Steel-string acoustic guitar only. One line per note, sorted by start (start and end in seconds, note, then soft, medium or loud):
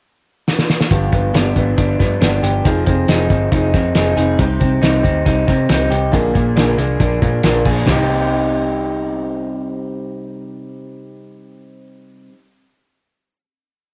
0.90 1.12 G2 medium
0.90 1.13 D3 medium
0.90 1.13 F3 medium
0.90 1.12 B3 medium
0.90 1.12 D4 medium
0.90 1.10 G4 medium
1.11 1.33 F3 soft
1.11 1.33 B3 soft
1.11 1.33 D4 medium
1.11 1.34 G4 medium
1.33 1.55 G2 medium
1.33 1.55 D3 medium
1.33 1.56 F3 medium
1.33 1.55 B3 medium
1.33 1.55 D4 medium
1.33 1.53 G4 medium
1.54 1.75 F3 soft
1.54 1.77 B3 soft
1.54 1.77 D4 medium
1.54 1.77 G4 medium
1.76 1.99 F3 medium
1.76 2.00 B3 medium
1.76 1.99 D4 medium
1.76 1.97 G4 medium
1.98 2.21 F3 soft
1.98 2.22 B3 soft
1.98 2.22 D4 medium
1.98 2.21 G4 medium
2.21 2.43 G2 medium
2.21 2.43 D3 medium
2.21 2.44 F3 medium
2.21 2.44 B3 medium
2.21 2.42 D4 loud
2.21 2.41 G4 medium
2.42 2.63 F3 soft
2.42 2.65 B3 soft
2.42 2.65 D4 soft
2.42 2.64 G4 medium
2.64 2.86 F3 medium
2.64 2.87 C4 medium
2.64 2.86 D#4 medium
2.64 2.85 G#4 medium
2.86 3.07 C4 soft
2.86 3.08 D#4 medium
2.86 3.08 G#4 medium
3.07 3.30 F3 medium
3.07 3.30 C4 medium
3.07 3.30 D#4 medium
3.07 3.28 G#4 medium
3.29 3.52 C4 soft
3.29 3.53 D#4 soft
3.29 3.51 G#4 medium
3.52 3.74 F3 medium
3.52 3.74 C4 medium
3.52 3.74 D#4 medium
3.56 3.72 G#4 medium
3.74 3.94 C4 soft
3.74 3.95 D#4 medium
3.74 3.95 G#4 medium
3.95 4.17 F3 medium
3.95 4.17 C4 medium
3.95 4.17 D#4 medium
3.95 4.15 G#4 loud
4.16 4.38 C4 soft
4.16 4.38 D#4 medium
4.16 4.38 G#4 medium
4.38 4.60 C3 medium
4.38 4.60 G3 medium
4.38 4.61 C4 medium
4.38 4.60 D#4 medium
4.38 4.58 G4 medium
4.59 4.81 C4 soft
4.59 4.81 D#4 medium
4.59 4.82 G4 medium
4.81 5.03 C3 medium
4.81 5.04 G3 medium
4.81 5.04 C4 medium
4.81 5.03 D#4 medium
4.81 5.02 G4 loud
5.03 5.24 C4 soft
5.03 5.26 D#4 medium
5.03 5.26 G4 medium
5.24 5.47 G3 medium
5.24 5.48 C4 medium
5.24 5.48 D#4 medium
5.24 5.46 G4 medium
5.48 5.70 C4 soft
5.48 5.71 D#4 medium
5.48 5.69 G4 medium
5.70 5.91 C3 medium
5.70 5.92 G3 medium
5.70 5.92 C4 medium
5.70 5.91 D#4 loud
5.70 5.89 G4 loud
5.91 6.13 C4 soft
5.91 6.13 D#4 medium
5.91 6.13 G4 medium
6.11 6.34 A#2 medium
6.11 6.34 D3 medium
6.11 6.35 F3 medium
6.11 6.35 A#3 medium
6.11 6.34 D4 medium
6.11 6.33 G#4 loud
6.34 6.57 F3 soft
6.34 6.57 A#3 medium
6.34 6.57 D4 medium
6.34 6.56 G#4 medium
6.57 6.78 A#2 medium
6.57 6.79 D3 medium
6.57 6.79 F3 medium
6.57 6.79 A#3 loud
6.57 6.79 D4 loud
6.57 6.77 G#4 medium
6.78 6.98 F3 soft
6.78 7.00 A#3 medium
6.78 7.01 D4 medium
6.78 7.00 G#4 medium
6.99 7.21 F3 medium
6.99 7.22 A#3 medium
6.99 7.21 D4 medium
6.99 7.20 G#4 medium
7.21 7.43 F3 soft
7.21 7.44 A#3 medium
7.21 7.44 D4 medium
7.21 7.43 G#4 medium
7.43 7.65 A#2 medium
7.43 7.65 D3 medium
7.43 7.65 F3 medium
7.43 7.66 A#3 medium
7.43 7.65 D4 loud
7.43 7.63 G#4 loud
7.64 7.87 F3 soft
7.64 7.88 A#3 soft
7.64 7.87 D4 medium
7.64 7.86 G#4 medium
7.81 12.28 C3 medium
7.87 12.34 G3 medium
7.92 12.39 C4 medium
7.96 12.43 D#4 medium
8.00 12.47 G4 medium